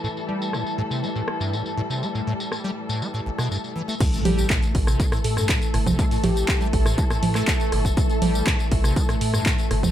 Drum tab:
CC |----------------|----------------|x---------------|----------------|
HH |----------------|----------------|xxoxxxoxxxo-xxox|xooxxxoxxxo-xxox|
TB |xx-xxx-xxx-xxx-x|xx-xxx-xxx-xxx-x|xx-xxx-xxx-xxx-x|xx-xxx-xxx-xxx-x|
CP |----------------|----------------|----x-------x---|----x------xx---|
SD |----r-----r-----|----r------r----|----r--r-r-r--r-|----r--r-r-r--r-|
CG |----------------|----------------|--O------------O|--O-------O-----|
BD |----------------|----------------|o---o-o-o---o--o|o---o-o-o---o--o|

CC |----------------|
HH |xxoxxxoxxxoxxxox|
TB |xx-xxx-xxx-xxx-x|
CP |----x-------x---|
SD |----r--r-r-r--r-|
CG |--O------------O|
BD |o---o-o-o---o--o|